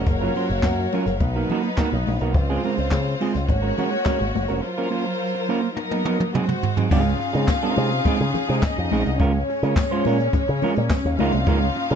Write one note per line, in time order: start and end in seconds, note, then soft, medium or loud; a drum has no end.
0.06 0.29 F#1 medium
0.06 1.20 F#3 medium
0.06 1.19 A#3 medium
0.06 1.19 F#4 medium
0.06 1.20 A#4 medium
0.06 1.19 C#5 medium
0.06 1.20 F5 medium
0.06 muted clean electric guitar stroke soft
0.06 kick loud
0.06 closed hi-hat medium
0.21 0.34 F#3 medium
0.21 0.35 C#4 medium
0.21 0.35 F4 medium
0.21 0.36 A#4 medium
0.35 0.49 F#3 medium
0.35 0.50 C#4 medium
0.35 0.50 F4 medium
0.35 0.50 C5 medium
0.35 open hi-hat medium
0.50 0.61 F#1 medium
0.50 muted clean electric guitar stroke soft
0.50 closed hi-hat soft
0.63 0.85 F#2 loud
0.63 kick loud
0.63 snare loud
0.63 clap medium
0.63 high conga medium
0.79 muted clean electric guitar stroke soft
0.92 1.11 F#3 medium
0.92 1.07 C#4 medium
0.92 1.07 F4 medium
0.92 1.07 A#4 medium
0.92 open hi-hat medium
0.92 muted conga medium
1.06 1.17 F#1 medium
1.06 muted clean electric guitar stroke soft
1.06 snare soft
1.06 closed hi-hat soft
1.20 1.43 B1 medium
1.20 2.33 F#3 medium
1.20 2.34 F#3 medium
1.20 2.34 B3 medium
1.20 2.32 D#4 medium
1.20 2.34 D#4 medium
1.20 2.33 B4 medium
1.20 muted clean electric guitar stroke soft
1.20 kick loud
1.20 closed hi-hat medium
1.20 muted conga medium
1.36 1.49 A#3 medium
1.36 1.50 D#4 soft
1.36 1.50 F#4 soft
1.36 1.49 A#4 medium
1.49 1.68 A#3 medium
1.49 1.64 D#4 medium
1.49 1.64 F#4 medium
1.49 1.63 A#4 loud
1.49 open hi-hat medium
1.49 muted conga soft
1.49 low conga medium
1.63 muted clean electric guitar stroke soft
1.63 closed hi-hat soft
1.77 1.96 A#3 medium
1.77 1.92 D#4 medium
1.77 1.92 F#4 medium
1.77 1.91 A#4 medium
1.77 kick loud
1.77 snare loud
1.77 clap medium
1.77 closed hi-hat medium
1.77 high conga medium
1.92 2.03 B1 medium
1.92 muted clean electric guitar stroke soft
2.07 2.18 A#1 medium
2.07 muted clean electric guitar stroke soft
2.07 open hi-hat medium
2.07 high conga medium
2.19 2.35 B1 medium
2.19 2.35 A#3 soft
2.19 2.35 D#4 medium
2.19 2.35 F#4 medium
2.19 2.35 A#4 medium
2.19 closed hi-hat soft
2.34 2.57 C#2 loud
2.34 3.48 C#3 medium
2.34 3.47 G#3 medium
2.34 3.48 C4 medium
2.34 3.47 F4 medium
2.34 3.48 F4 medium
2.34 3.47 C5 medium
2.34 muted clean electric guitar stroke soft
2.34 kick loud
2.34 closed hi-hat medium
2.50 2.63 G#3 medium
2.50 2.64 C4 medium
2.50 2.64 F4 medium
2.50 2.65 G#4 medium
2.64 2.78 G#3 medium
2.64 2.77 C4 medium
2.64 2.77 F4 medium
2.64 2.77 A#4 medium
2.64 open hi-hat medium
2.77 2.89 C#2 medium
2.77 muted clean electric guitar stroke medium
2.77 closed hi-hat soft
2.91 3.14 C#3 medium
2.91 kick medium
2.91 snare loud
2.91 clap medium
2.91 closed hi-hat medium
2.91 high conga medium
3.06 muted clean electric guitar stroke soft
3.21 3.39 G#3 medium
3.21 3.35 C4 medium
3.21 3.35 F4 medium
3.21 3.34 G#4 medium
3.21 open hi-hat medium
3.21 muted conga medium
3.34 3.46 C#2 medium
3.34 snare soft
3.34 closed hi-hat soft
3.48 3.71 G#1 loud
3.48 4.62 G#3 medium
3.48 4.61 A#3 medium
3.48 4.62 C#4 medium
3.48 4.61 F#4 medium
3.48 4.62 F#4 medium
3.48 4.61 C#5 loud
3.48 muted clean electric guitar stroke soft
3.48 kick medium
3.48 closed hi-hat medium
3.48 muted conga medium
3.62 3.76 G#3 soft
3.62 3.77 C#4 soft
3.62 3.77 F#4 medium
3.62 3.77 A#4 medium
3.78 3.96 G#3 medium
3.78 3.92 C#4 medium
3.78 3.91 F#4 medium
3.78 3.91 A#4 medium
3.78 open hi-hat medium
3.78 muted conga soft
3.78 low conga medium
3.92 muted clean electric guitar stroke soft
3.92 closed hi-hat soft
4.04 4.24 G#3 medium
4.04 4.20 C#4 medium
4.04 4.20 F#4 medium
4.04 4.20 A#4 medium
4.04 kick loud
4.04 snare loud
4.04 clap medium
4.04 closed hi-hat medium
4.04 high conga medium
4.20 4.31 G#1 medium
4.20 muted clean electric guitar stroke soft
4.35 4.46 F#1 medium
4.35 muted clean electric guitar stroke soft
4.35 open hi-hat medium
4.35 high conga medium
4.48 4.60 F1 medium
4.48 4.63 G#3 soft
4.48 4.62 C#4 medium
4.48 4.63 F#4 medium
4.48 4.63 A#4 medium
4.48 closed hi-hat soft
4.62 5.74 F#3 medium
4.62 5.77 F#3 medium
4.62 5.74 F4 medium
4.62 5.76 F4 medium
4.62 5.76 A#4 medium
4.62 5.74 C5 medium
4.62 muted clean electric guitar stroke soft
4.78 4.89 A#3 medium
4.78 4.89 C#4 medium
4.78 4.90 F4 medium
4.78 4.91 A#4 medium
4.90 5.05 A#3 medium
4.90 5.05 C#4 medium
4.90 5.06 F4 medium
4.90 5.05 C5 medium
5.06 muted clean electric guitar stroke medium
5.35 muted clean electric guitar stroke soft
5.49 5.67 A#3 medium
5.49 5.63 C#4 medium
5.49 5.62 F4 medium
5.49 5.62 A#4 loud
5.63 muted clean electric guitar stroke soft
5.76 6.33 F#3 medium
5.76 6.34 A#3 medium
5.76 6.34 B3 medium
5.76 6.33 D#4 medium
5.76 6.34 D#4 medium
5.76 6.33 A#4 medium
5.76 muted clean electric guitar stroke soft
5.76 high tom medium
5.91 6.04 F#3 soft
5.91 6.05 B3 soft
5.91 6.05 D#4 medium
5.91 6.05 A#4 medium
5.91 high tom medium
6.05 6.23 F#3 medium
6.05 6.20 B3 medium
6.05 6.19 D#4 medium
6.05 6.19 A#4 medium
6.05 mid tom medium
6.20 muted clean electric guitar stroke soft
6.20 mid tom medium
6.33 6.52 F#3 medium
6.33 6.90 G#3 medium
6.33 6.91 G#3 medium
6.33 6.47 C4 medium
6.33 6.91 C4 medium
6.33 6.47 D#4 medium
6.33 6.90 F#4 medium
6.33 6.91 F#4 medium
6.33 6.46 G#4 medium
6.33 6.90 C5 medium
6.33 mid tom medium
6.48 muted clean electric guitar stroke soft
6.48 mid tom medium
6.63 muted clean electric guitar stroke soft
6.63 floor tom medium
6.77 6.91 F#3 soft
6.77 6.90 C4 medium
6.77 6.91 D#4 medium
6.77 6.91 G#4 medium
6.77 floor tom medium
6.90 7.13 C#2 loud
6.90 7.11 G#3 medium
6.90 7.04 C4 medium
6.90 11.95 C#4 medium
6.90 7.04 D#4 medium
6.90 9.18 D#4 medium
6.90 8.58 F4 medium
6.90 7.03 G#4 loud
6.90 9.18 G#4 loud
6.90 8.58 F5 loud
6.90 kick loud
6.90 crash loud
7.04 muted clean electric guitar stroke soft
7.19 muted clean electric guitar stroke soft
7.19 open hi-hat medium
7.33 7.45 C#3 medium
7.33 7.48 G#3 medium
7.33 7.48 C4 medium
7.33 7.48 D#4 medium
7.33 7.48 G#4 medium
7.33 closed hi-hat medium
7.48 kick loud
7.48 snare loud
7.48 clap medium
7.48 closed hi-hat medium
7.48 tambourine loud
7.48 high conga medium
7.63 7.76 G#3 medium
7.63 7.76 C4 medium
7.63 7.77 D#4 medium
7.63 7.78 A#4 medium
7.76 7.99 C3 medium
7.76 7.91 G#3 medium
7.76 7.91 C4 medium
7.76 7.91 D#4 medium
7.76 7.90 G#4 medium
7.76 open hi-hat medium
7.76 muted conga medium
7.91 muted clean electric guitar stroke medium
7.91 closed hi-hat medium
8.05 8.24 G#3 medium
8.05 8.20 C4 loud
8.05 8.19 D#4 medium
8.05 8.19 G#4 loud
8.05 muted picked electric bass stroke medium
8.05 kick loud
8.05 closed hi-hat medium
8.05 muted conga medium
8.20 8.31 C#3 medium
8.20 muted clean electric guitar stroke soft
8.34 muted clean electric guitar stroke soft
8.34 open hi-hat medium
8.34 muted conga soft
8.34 low conga medium
8.48 8.60 C3 medium
8.48 8.63 G#3 medium
8.48 8.63 C4 medium
8.48 8.62 D#4 medium
8.48 8.62 G#4 medium
8.48 closed hi-hat soft
8.63 9.18 D#4 medium
8.63 9.18 D#5 medium
8.63 kick loud
8.63 snare loud
8.63 clap loud
8.63 tambourine medium
8.63 high conga medium
8.77 8.88 F2 medium
8.77 muted clean electric guitar stroke soft
8.91 9.02 A#1 medium
8.91 9.09 G#3 medium
8.91 9.05 C4 medium
8.91 9.05 D#4 medium
8.91 9.04 G#4 loud
8.91 open hi-hat medium
8.91 high conga medium
9.05 9.17 C2 loud
9.05 muted clean electric guitar stroke medium
9.05 closed hi-hat medium
9.18 9.42 C#2 loud
9.18 11.17 G#3 medium
9.18 9.38 G#3 medium
9.18 11.14 C#4 medium
9.18 9.34 C#4 medium
9.18 9.34 F4 medium
9.18 9.33 A#4 medium
9.18 11.14 C#5 medium
9.18 kick loud
9.18 closed hi-hat medium
9.34 muted clean electric guitar stroke soft
9.49 muted clean electric guitar stroke soft
9.49 open hi-hat medium
9.63 9.73 C#3 loud
9.63 9.76 G#3 medium
9.63 9.77 C#4 medium
9.63 9.77 F4 medium
9.63 9.77 A#4 medium
9.63 closed hi-hat medium
9.76 muted clean electric guitar stroke soft
9.76 kick loud
9.76 snare loud
9.76 clap medium
9.76 closed hi-hat medium
9.76 tambourine loud
9.76 high conga medium
9.91 10.04 G#3 medium
9.91 10.05 C#4 medium
9.91 10.05 F4 medium
9.91 10.07 C5 loud
10.05 10.27 A#2 medium
10.05 10.19 G#3 medium
10.05 10.20 C#4 medium
10.05 10.19 F4 medium
10.05 10.19 A#4 medium
10.05 open hi-hat medium
10.05 muted conga medium
10.20 muted clean electric guitar stroke medium
10.20 closed hi-hat soft
10.33 muted picked electric bass stroke soft
10.33 kick loud
10.33 closed hi-hat medium
10.33 muted conga medium
10.33 low conga medium
10.48 10.59 C#3 medium
10.48 muted clean electric guitar stroke soft
10.62 10.80 G#3 medium
10.62 10.76 C#4 medium
10.62 10.76 F4 medium
10.62 10.75 A#4 medium
10.62 open hi-hat medium
10.62 muted conga soft
10.62 low conga medium
10.76 10.88 A#2 loud
10.76 muted clean electric guitar stroke soft
10.76 closed hi-hat soft
10.89 kick loud
10.89 snare loud
10.89 clap loud
10.89 closed hi-hat medium
10.89 tambourine medium
10.89 high conga medium
11.05 11.16 D#2 medium
11.05 muted clean electric guitar stroke medium
11.18 11.30 C#2 loud
11.18 11.37 G#3 loud
11.18 11.95 A#3 medium
11.18 11.95 D#4 medium
11.18 11.34 D#4 loud
11.18 11.95 F4 medium
11.18 11.34 F4 loud
11.18 11.33 A#4 loud
11.18 11.95 F5 loud
11.18 open hi-hat medium
11.18 high conga medium
11.32 11.44 C2 loud
11.32 muted clean electric guitar stroke medium
11.32 closed hi-hat medium
11.47 11.69 C#2 loud
11.47 11.65 G#3 medium
11.47 11.61 D#4 loud
11.47 11.61 F4 loud
11.47 11.60 A#4 loud
11.47 kick loud
11.47 closed hi-hat medium
11.62 muted clean electric guitar stroke soft
11.76 muted clean electric guitar stroke soft
11.76 open hi-hat medium
11.90 11.95 C#3 loud
11.90 11.95 G#3 medium
11.90 11.95 D#4 medium
11.90 11.95 F4 medium
11.90 11.95 A#4 medium
11.90 closed hi-hat medium